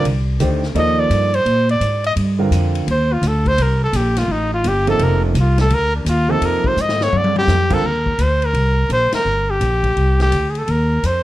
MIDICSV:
0, 0, Header, 1, 6, 480
1, 0, Start_track
1, 0, Tempo, 354400
1, 1017, Time_signature, 4, 2, 24, 8
1, 15210, End_track
2, 0, Start_track
2, 0, Title_t, "Trumpet"
2, 0, Program_c, 0, 56
2, 1063, Note_on_c, 0, 75, 100
2, 1349, Note_on_c, 0, 74, 96
2, 1369, Note_off_c, 0, 75, 0
2, 1827, Note_on_c, 0, 72, 102
2, 1847, Note_off_c, 0, 74, 0
2, 2294, Note_off_c, 0, 72, 0
2, 2314, Note_on_c, 0, 74, 85
2, 2744, Note_off_c, 0, 74, 0
2, 2794, Note_on_c, 0, 75, 106
2, 2886, Note_off_c, 0, 75, 0
2, 3946, Note_on_c, 0, 72, 88
2, 4236, Note_on_c, 0, 65, 81
2, 4256, Note_off_c, 0, 72, 0
2, 4438, Note_on_c, 0, 69, 86
2, 4459, Note_off_c, 0, 65, 0
2, 4711, Note_on_c, 0, 72, 109
2, 4731, Note_off_c, 0, 69, 0
2, 4905, Note_on_c, 0, 70, 91
2, 4925, Note_off_c, 0, 72, 0
2, 5185, Note_off_c, 0, 70, 0
2, 5198, Note_on_c, 0, 69, 89
2, 5367, Note_on_c, 0, 67, 80
2, 5387, Note_off_c, 0, 69, 0
2, 5667, Note_on_c, 0, 65, 87
2, 5687, Note_off_c, 0, 67, 0
2, 5847, Note_on_c, 0, 63, 92
2, 5867, Note_off_c, 0, 65, 0
2, 6136, Note_off_c, 0, 63, 0
2, 6146, Note_on_c, 0, 65, 91
2, 6339, Note_on_c, 0, 67, 88
2, 6359, Note_off_c, 0, 65, 0
2, 6622, Note_off_c, 0, 67, 0
2, 6639, Note_on_c, 0, 69, 98
2, 6819, Note_on_c, 0, 70, 86
2, 6839, Note_off_c, 0, 69, 0
2, 7102, Note_off_c, 0, 70, 0
2, 7109, Note_on_c, 0, 62, 52
2, 7307, Note_on_c, 0, 65, 80
2, 7326, Note_off_c, 0, 62, 0
2, 7586, Note_off_c, 0, 65, 0
2, 7598, Note_on_c, 0, 69, 99
2, 7774, Note_on_c, 0, 70, 108
2, 7794, Note_off_c, 0, 69, 0
2, 8060, Note_off_c, 0, 70, 0
2, 8071, Note_on_c, 0, 62, 54
2, 8254, Note_on_c, 0, 65, 91
2, 8274, Note_off_c, 0, 62, 0
2, 8544, Note_on_c, 0, 69, 102
2, 8564, Note_off_c, 0, 65, 0
2, 8741, Note_on_c, 0, 70, 86
2, 8761, Note_off_c, 0, 69, 0
2, 9038, Note_on_c, 0, 72, 103
2, 9058, Note_off_c, 0, 70, 0
2, 9229, Note_on_c, 0, 75, 93
2, 9250, Note_off_c, 0, 72, 0
2, 9522, Note_on_c, 0, 73, 92
2, 9542, Note_off_c, 0, 75, 0
2, 9716, Note_on_c, 0, 74, 92
2, 9736, Note_off_c, 0, 73, 0
2, 9991, Note_off_c, 0, 74, 0
2, 10001, Note_on_c, 0, 67, 104
2, 10478, Note_on_c, 0, 69, 102
2, 10498, Note_off_c, 0, 67, 0
2, 10646, Note_on_c, 0, 70, 89
2, 10666, Note_off_c, 0, 69, 0
2, 11129, Note_on_c, 0, 72, 87
2, 11149, Note_off_c, 0, 70, 0
2, 11446, Note_on_c, 0, 70, 96
2, 11467, Note_off_c, 0, 72, 0
2, 12073, Note_off_c, 0, 70, 0
2, 12089, Note_on_c, 0, 72, 89
2, 12360, Note_off_c, 0, 72, 0
2, 12391, Note_on_c, 0, 70, 99
2, 12868, Note_on_c, 0, 67, 89
2, 12888, Note_off_c, 0, 70, 0
2, 13817, Note_off_c, 0, 67, 0
2, 13844, Note_on_c, 0, 67, 95
2, 14226, Note_on_c, 0, 68, 50
2, 14246, Note_off_c, 0, 67, 0
2, 14335, Note_on_c, 0, 69, 88
2, 14355, Note_off_c, 0, 68, 0
2, 14418, Note_off_c, 0, 69, 0
2, 14418, Note_on_c, 0, 69, 76
2, 14498, Note_on_c, 0, 70, 87
2, 14518, Note_off_c, 0, 69, 0
2, 14982, Note_on_c, 0, 72, 92
2, 15002, Note_off_c, 0, 70, 0
2, 15210, Note_off_c, 0, 72, 0
2, 15210, End_track
3, 0, Start_track
3, 0, Title_t, "Grand piano"
3, 0, Program_c, 1, 0
3, 543, Note_on_c, 1, 51, 67
3, 547, Note_on_c, 1, 57, 58
3, 553, Note_on_c, 1, 62, 54
3, 554, Note_on_c, 1, 72, 70
3, 556, Note_on_c, 1, 67, 56
3, 819, Note_off_c, 1, 51, 0
3, 821, Note_off_c, 1, 57, 0
3, 824, Note_off_c, 1, 62, 0
3, 825, Note_off_c, 1, 72, 0
3, 826, Note_off_c, 1, 67, 0
3, 1016, Note_on_c, 1, 58, 67
3, 1018, Note_on_c, 1, 53, 68
3, 1022, Note_on_c, 1, 63, 64
3, 1029, Note_on_c, 1, 69, 63
3, 1031, Note_on_c, 1, 74, 71
3, 1742, Note_off_c, 1, 58, 0
3, 1743, Note_off_c, 1, 53, 0
3, 1745, Note_off_c, 1, 63, 0
3, 1749, Note_off_c, 1, 69, 0
3, 1749, Note_off_c, 1, 74, 0
3, 3233, Note_on_c, 1, 50, 65
3, 3236, Note_on_c, 1, 55, 58
3, 3245, Note_on_c, 1, 65, 58
3, 3246, Note_on_c, 1, 60, 58
3, 3251, Note_on_c, 1, 70, 70
3, 3850, Note_off_c, 1, 50, 0
3, 3852, Note_off_c, 1, 55, 0
3, 3856, Note_off_c, 1, 65, 0
3, 3857, Note_off_c, 1, 60, 0
3, 3859, Note_off_c, 1, 70, 0
3, 6599, Note_on_c, 1, 48, 80
3, 6600, Note_on_c, 1, 53, 66
3, 6601, Note_on_c, 1, 58, 72
3, 6608, Note_on_c, 1, 63, 66
3, 6613, Note_on_c, 1, 69, 80
3, 7212, Note_off_c, 1, 48, 0
3, 7213, Note_off_c, 1, 53, 0
3, 7213, Note_off_c, 1, 58, 0
3, 7217, Note_off_c, 1, 63, 0
3, 7219, Note_off_c, 1, 69, 0
3, 8509, Note_on_c, 1, 48, 67
3, 8513, Note_on_c, 1, 53, 65
3, 8514, Note_on_c, 1, 58, 57
3, 8524, Note_on_c, 1, 63, 57
3, 8525, Note_on_c, 1, 69, 75
3, 9127, Note_off_c, 1, 48, 0
3, 9129, Note_off_c, 1, 53, 0
3, 9130, Note_off_c, 1, 58, 0
3, 9135, Note_off_c, 1, 63, 0
3, 9136, Note_off_c, 1, 69, 0
3, 10431, Note_on_c, 1, 50, 70
3, 10433, Note_on_c, 1, 55, 71
3, 10435, Note_on_c, 1, 60, 64
3, 10436, Note_on_c, 1, 65, 70
3, 10441, Note_on_c, 1, 70, 77
3, 10586, Note_off_c, 1, 50, 0
3, 10587, Note_off_c, 1, 55, 0
3, 10588, Note_off_c, 1, 60, 0
3, 10589, Note_off_c, 1, 65, 0
3, 10592, Note_off_c, 1, 70, 0
3, 15210, End_track
4, 0, Start_track
4, 0, Title_t, "Upright bass"
4, 0, Program_c, 2, 32
4, 51, Note_on_c, 2, 36, 79
4, 519, Note_off_c, 2, 36, 0
4, 532, Note_on_c, 2, 38, 86
4, 999, Note_off_c, 2, 38, 0
4, 1005, Note_on_c, 2, 39, 81
4, 1474, Note_off_c, 2, 39, 0
4, 1488, Note_on_c, 2, 43, 92
4, 1955, Note_off_c, 2, 43, 0
4, 1963, Note_on_c, 2, 46, 76
4, 2432, Note_off_c, 2, 46, 0
4, 2440, Note_on_c, 2, 44, 81
4, 2909, Note_off_c, 2, 44, 0
4, 2924, Note_on_c, 2, 43, 91
4, 3388, Note_off_c, 2, 43, 0
4, 3397, Note_on_c, 2, 41, 92
4, 3867, Note_off_c, 2, 41, 0
4, 3881, Note_on_c, 2, 39, 88
4, 4349, Note_off_c, 2, 39, 0
4, 4356, Note_on_c, 2, 38, 96
4, 4826, Note_off_c, 2, 38, 0
4, 4846, Note_on_c, 2, 36, 84
4, 5311, Note_off_c, 2, 36, 0
4, 5317, Note_on_c, 2, 34, 96
4, 5786, Note_off_c, 2, 34, 0
4, 5793, Note_on_c, 2, 33, 87
4, 6264, Note_off_c, 2, 33, 0
4, 6287, Note_on_c, 2, 31, 90
4, 6751, Note_off_c, 2, 31, 0
4, 6761, Note_on_c, 2, 29, 84
4, 7228, Note_off_c, 2, 29, 0
4, 7238, Note_on_c, 2, 36, 94
4, 7706, Note_off_c, 2, 36, 0
4, 7716, Note_on_c, 2, 38, 87
4, 8186, Note_off_c, 2, 38, 0
4, 8191, Note_on_c, 2, 39, 98
4, 8663, Note_off_c, 2, 39, 0
4, 8682, Note_on_c, 2, 41, 84
4, 8972, Note_off_c, 2, 41, 0
4, 9160, Note_on_c, 2, 44, 93
4, 9628, Note_off_c, 2, 44, 0
4, 9646, Note_on_c, 2, 43, 79
4, 10111, Note_off_c, 2, 43, 0
4, 10121, Note_on_c, 2, 41, 100
4, 10589, Note_off_c, 2, 41, 0
4, 10595, Note_on_c, 2, 39, 74
4, 11067, Note_off_c, 2, 39, 0
4, 11081, Note_on_c, 2, 38, 85
4, 11547, Note_off_c, 2, 38, 0
4, 11555, Note_on_c, 2, 36, 80
4, 12028, Note_off_c, 2, 36, 0
4, 12044, Note_on_c, 2, 34, 84
4, 12336, Note_off_c, 2, 34, 0
4, 12527, Note_on_c, 2, 31, 75
4, 12995, Note_off_c, 2, 31, 0
4, 13007, Note_on_c, 2, 34, 86
4, 13476, Note_off_c, 2, 34, 0
4, 13496, Note_on_c, 2, 36, 79
4, 13961, Note_off_c, 2, 36, 0
4, 13977, Note_on_c, 2, 38, 81
4, 14443, Note_off_c, 2, 38, 0
4, 14461, Note_on_c, 2, 39, 84
4, 14925, Note_off_c, 2, 39, 0
4, 14940, Note_on_c, 2, 41, 91
4, 15210, Note_off_c, 2, 41, 0
4, 15210, End_track
5, 0, Start_track
5, 0, Title_t, "Muted upright bass strokes"
5, 8998, Note_on_c, 9, 29, 45
5, 9133, Note_off_c, 9, 29, 0
5, 12361, Note_on_c, 9, 29, 35
5, 12497, Note_off_c, 9, 29, 0
5, 15210, End_track
6, 0, Start_track
6, 0, Title_t, "Drums"
6, 68, Note_on_c, 9, 51, 66
6, 204, Note_off_c, 9, 51, 0
6, 541, Note_on_c, 9, 44, 56
6, 541, Note_on_c, 9, 51, 65
6, 676, Note_off_c, 9, 44, 0
6, 676, Note_off_c, 9, 51, 0
6, 850, Note_on_c, 9, 38, 38
6, 985, Note_off_c, 9, 38, 0
6, 1021, Note_on_c, 9, 51, 66
6, 1157, Note_off_c, 9, 51, 0
6, 1498, Note_on_c, 9, 44, 49
6, 1498, Note_on_c, 9, 51, 67
6, 1634, Note_off_c, 9, 44, 0
6, 1634, Note_off_c, 9, 51, 0
6, 1812, Note_on_c, 9, 51, 49
6, 1947, Note_off_c, 9, 51, 0
6, 1979, Note_on_c, 9, 51, 52
6, 2114, Note_off_c, 9, 51, 0
6, 2292, Note_on_c, 9, 51, 44
6, 2427, Note_off_c, 9, 51, 0
6, 2453, Note_on_c, 9, 44, 50
6, 2453, Note_on_c, 9, 51, 63
6, 2589, Note_off_c, 9, 44, 0
6, 2589, Note_off_c, 9, 51, 0
6, 2765, Note_on_c, 9, 51, 46
6, 2901, Note_off_c, 9, 51, 0
6, 2933, Note_on_c, 9, 51, 69
6, 3069, Note_off_c, 9, 51, 0
6, 3413, Note_on_c, 9, 44, 64
6, 3413, Note_on_c, 9, 51, 76
6, 3548, Note_off_c, 9, 44, 0
6, 3548, Note_off_c, 9, 51, 0
6, 3727, Note_on_c, 9, 51, 52
6, 3862, Note_off_c, 9, 51, 0
6, 3897, Note_on_c, 9, 51, 65
6, 4033, Note_off_c, 9, 51, 0
6, 4370, Note_on_c, 9, 44, 58
6, 4370, Note_on_c, 9, 51, 61
6, 4506, Note_off_c, 9, 44, 0
6, 4506, Note_off_c, 9, 51, 0
6, 4680, Note_on_c, 9, 36, 53
6, 4684, Note_on_c, 9, 51, 47
6, 4816, Note_off_c, 9, 36, 0
6, 4819, Note_off_c, 9, 51, 0
6, 4850, Note_on_c, 9, 51, 70
6, 4986, Note_off_c, 9, 51, 0
6, 5326, Note_on_c, 9, 44, 56
6, 5326, Note_on_c, 9, 51, 81
6, 5462, Note_off_c, 9, 44, 0
6, 5462, Note_off_c, 9, 51, 0
6, 5639, Note_on_c, 9, 38, 44
6, 5641, Note_on_c, 9, 51, 68
6, 5774, Note_off_c, 9, 38, 0
6, 5777, Note_off_c, 9, 51, 0
6, 6286, Note_on_c, 9, 44, 54
6, 6286, Note_on_c, 9, 51, 70
6, 6421, Note_off_c, 9, 44, 0
6, 6421, Note_off_c, 9, 51, 0
6, 6598, Note_on_c, 9, 51, 48
6, 6734, Note_off_c, 9, 51, 0
6, 6763, Note_on_c, 9, 51, 67
6, 6898, Note_off_c, 9, 51, 0
6, 7246, Note_on_c, 9, 44, 58
6, 7246, Note_on_c, 9, 51, 71
6, 7382, Note_off_c, 9, 44, 0
6, 7382, Note_off_c, 9, 51, 0
6, 7553, Note_on_c, 9, 38, 60
6, 7556, Note_on_c, 9, 51, 52
6, 7689, Note_off_c, 9, 38, 0
6, 7692, Note_off_c, 9, 51, 0
6, 7726, Note_on_c, 9, 51, 63
6, 7861, Note_off_c, 9, 51, 0
6, 8211, Note_on_c, 9, 44, 61
6, 8211, Note_on_c, 9, 51, 70
6, 8347, Note_off_c, 9, 44, 0
6, 8347, Note_off_c, 9, 51, 0
6, 8692, Note_on_c, 9, 51, 65
6, 8827, Note_off_c, 9, 51, 0
6, 8996, Note_on_c, 9, 36, 72
6, 9132, Note_off_c, 9, 36, 0
6, 9170, Note_on_c, 9, 44, 71
6, 9306, Note_off_c, 9, 44, 0
6, 9329, Note_on_c, 9, 38, 67
6, 9464, Note_off_c, 9, 38, 0
6, 9491, Note_on_c, 9, 38, 78
6, 9626, Note_off_c, 9, 38, 0
6, 9651, Note_on_c, 9, 48, 73
6, 9787, Note_off_c, 9, 48, 0
6, 9807, Note_on_c, 9, 48, 77
6, 9943, Note_off_c, 9, 48, 0
6, 9966, Note_on_c, 9, 48, 79
6, 10101, Note_off_c, 9, 48, 0
6, 10130, Note_on_c, 9, 38, 63
6, 10133, Note_on_c, 9, 44, 66
6, 10266, Note_off_c, 9, 38, 0
6, 10268, Note_off_c, 9, 44, 0
6, 10433, Note_on_c, 9, 49, 81
6, 10437, Note_on_c, 9, 36, 72
6, 10569, Note_off_c, 9, 49, 0
6, 10572, Note_off_c, 9, 36, 0
6, 10918, Note_on_c, 9, 36, 50
6, 11053, Note_off_c, 9, 36, 0
6, 11087, Note_on_c, 9, 44, 57
6, 11087, Note_on_c, 9, 51, 65
6, 11223, Note_off_c, 9, 44, 0
6, 11223, Note_off_c, 9, 51, 0
6, 11404, Note_on_c, 9, 51, 43
6, 11539, Note_off_c, 9, 51, 0
6, 11573, Note_on_c, 9, 51, 54
6, 11708, Note_off_c, 9, 51, 0
6, 12051, Note_on_c, 9, 44, 48
6, 12051, Note_on_c, 9, 51, 65
6, 12186, Note_off_c, 9, 44, 0
6, 12186, Note_off_c, 9, 51, 0
6, 12356, Note_on_c, 9, 38, 64
6, 12358, Note_on_c, 9, 51, 61
6, 12491, Note_off_c, 9, 38, 0
6, 12494, Note_off_c, 9, 51, 0
6, 13013, Note_on_c, 9, 44, 48
6, 13013, Note_on_c, 9, 51, 67
6, 13148, Note_off_c, 9, 44, 0
6, 13148, Note_off_c, 9, 51, 0
6, 13322, Note_on_c, 9, 36, 50
6, 13323, Note_on_c, 9, 51, 46
6, 13458, Note_off_c, 9, 36, 0
6, 13459, Note_off_c, 9, 51, 0
6, 13499, Note_on_c, 9, 51, 49
6, 13634, Note_off_c, 9, 51, 0
6, 13810, Note_on_c, 9, 38, 44
6, 13812, Note_on_c, 9, 51, 38
6, 13945, Note_off_c, 9, 38, 0
6, 13948, Note_off_c, 9, 51, 0
6, 13976, Note_on_c, 9, 44, 60
6, 13976, Note_on_c, 9, 51, 71
6, 14112, Note_off_c, 9, 44, 0
6, 14112, Note_off_c, 9, 51, 0
6, 14289, Note_on_c, 9, 51, 39
6, 14425, Note_off_c, 9, 51, 0
6, 14460, Note_on_c, 9, 51, 58
6, 14596, Note_off_c, 9, 51, 0
6, 14946, Note_on_c, 9, 44, 51
6, 14946, Note_on_c, 9, 51, 71
6, 15082, Note_off_c, 9, 44, 0
6, 15082, Note_off_c, 9, 51, 0
6, 15210, End_track
0, 0, End_of_file